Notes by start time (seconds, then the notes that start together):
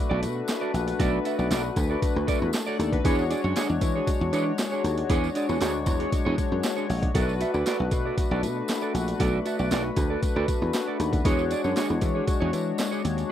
Already playing: A3 D4 F#4 B4
0.10 B1 F#4 A4 D5
0.22 B2, muted clean electric guitar stroke, closed hi-hat, tambourine
0.36 muted clean electric guitar stroke
0.48 muted clean electric guitar stroke, snare, clap, closed hi-hat, tambourine
0.61 F#4 A4 D5
0.74 A#1, closed hi-hat, tambourine
0.87 muted clean electric guitar stroke, closed hi-hat, tambourine
0.99 B1 F#4 A4 D5, kick, closed hi-hat, tambourine
1.25 F#4 A4 E5, closed hi-hat, tambourine
1.39 B1 F#4 A4 D5, tambourine
1.50 B1 F#4 A4 D5, snare, clap, closed hi-hat, tambourine
1.65 muted clean electric guitar stroke
1.76 D2, muted clean electric guitar stroke, kick, closed hi-hat, tambourine
1.90 F#4 A4 D5
2.02 muted clean electric guitar stroke, kick, closed hi-hat, tambourine
2.15 D2, muted clean electric guitar stroke
2.27 F#4 A4 D5, kick, closed hi-hat, tambourine
2.41 E2, muted clean electric guitar stroke
2.53 muted clean electric guitar stroke, snare, clap, closed hi-hat, tambourine
2.66 F#4 A4 C#5 D5 F#5, tambourine
2.79 D#2 A4 D5, closed hi-hat, tambourine
2.93 F#4 B4, muted clean electric guitar stroke, kick, closed hi-hat
3.04 E2 G#3 D4 F#4 G#4 C#5, kick, closed hi-hat, tambourine
3.19 tambourine
3.30 D4 G#4 D5, closed hi-hat, tambourine
3.44 F#2 D4 G#4 C#5
3.56 D4 G#4 C#5, snare, clap, closed hi-hat, tambourine
3.70 E2, muted clean electric guitar stroke
3.81 E3, muted clean electric guitar stroke, kick, closed hi-hat, tambourine
3.96 D4 G#4 C#5
4.07 kick, closed hi-hat, tambourine
4.21 E2, muted clean electric guitar stroke
4.33 E3 D4 G#4 C#5, closed hi-hat, tambourine
4.47 muted clean electric guitar stroke
4.58 muted clean electric guitar stroke, snare, clap, closed hi-hat, tambourine
4.72 D4 G#4 C#5, tambourine
4.84 D#2, closed hi-hat, tambourine
4.98 muted clean electric guitar stroke, closed hi-hat
5.09 E2 D4 G#4 C#5, kick, closed hi-hat, tambourine
5.24 tambourine
5.35 D4 G#4 D5, closed hi-hat, tambourine
5.49 E2 D4 G#4 C#5, tambourine
5.61 D2 D4 G#4 C#5, snare, clap, closed hi-hat, tambourine
5.74 muted clean electric guitar stroke
5.86 E2, muted clean electric guitar stroke, kick, closed hi-hat, tambourine
6.00 D4 G#4 C#5, closed hi-hat
6.12 muted clean electric guitar stroke, kick, closed hi-hat, tambourine
6.25 E2 D4 G#4 C#5
6.38 kick, closed hi-hat, tambourine
6.51 F#2, muted clean electric guitar stroke
6.63 muted clean electric guitar stroke, snare, clap, closed hi-hat, tambourine
6.77 D4 G#4 C#5, tambourine
6.89 A#1, muted clean electric guitar stroke, open hi-hat, tambourine
7.02 muted clean electric guitar stroke, kick, closed hi-hat
7.14 B1 A3 D4 F#4 A4 A#4 D5, kick, closed hi-hat, tambourine
7.22 B4
7.29 tambourine
7.40 F#4 A4 E5, closed hi-hat, tambourine
7.54 D2 F#4 A4 D5, tambourine
7.66 F#4 A4 D5, snare, clap, closed hi-hat, tambourine
7.80 B1, muted clean electric guitar stroke
7.91 B2, muted clean electric guitar stroke, kick, closed hi-hat, tambourine
8.05 F#4 A4 D5
8.18 kick, closed hi-hat, tambourine
8.31 B1 F#4 A4 D5
8.43 B2, muted clean electric guitar stroke, closed hi-hat, tambourine
8.57 muted clean electric guitar stroke
8.68 muted clean electric guitar stroke, snare, clap, closed hi-hat, tambourine
8.82 F#4 A4 D5, tambourine
8.94 A#1, closed hi-hat, tambourine
9.07 muted clean electric guitar stroke, closed hi-hat, tambourine
9.20 B1 F#4 A4 D5, kick, closed hi-hat, tambourine
9.46 F#4 A4 E5, closed hi-hat, tambourine
9.59 B1 F#4 A4 D5, tambourine
9.71 B1 F#4 A4 D5, snare, clap, closed hi-hat, tambourine
9.85 muted clean electric guitar stroke
9.96 D2, muted clean electric guitar stroke, kick, closed hi-hat, tambourine
10.10 F#4 A4 D5
10.23 muted clean electric guitar stroke, kick, closed hi-hat, tambourine
10.36 D2 F#4 A4 D5
10.48 kick, closed hi-hat, tambourine
10.62 E2, muted clean electric guitar stroke
10.73 muted clean electric guitar stroke, snare, clap, closed hi-hat, tambourine
10.87 F#4 A4 D5
11.00 D#2, closed hi-hat, tambourine
11.13 muted clean electric guitar stroke, kick, closed hi-hat, tambourine
11.24 E2 G#3 D4 F#4 G#4 C#5, kick, closed hi-hat, tambourine
11.39 tambourine
11.51 D4 G#4 D5, closed hi-hat, tambourine
11.64 F#2 D4 G#4 C#5, tambourine
11.76 D4 G#4 C#5, snare, clap, closed hi-hat, tambourine
11.90 E2, muted clean electric guitar stroke
12.01 E3, muted clean electric guitar stroke, kick, closed hi-hat, tambourine
12.15 D4 G#4 C#5
12.27 kick, closed hi-hat, tambourine
12.40 E2 D4 G#4 C#5
12.53 E3, muted clean electric guitar stroke, closed hi-hat, tambourine
12.66 muted clean electric guitar stroke
12.78 muted clean electric guitar stroke, snare, clap, closed hi-hat, tambourine
12.91 D4 G#4 C#5, tambourine
13.04 D#2, muted clean electric guitar stroke, closed hi-hat, tambourine
13.17 muted clean electric guitar stroke, closed hi-hat, tambourine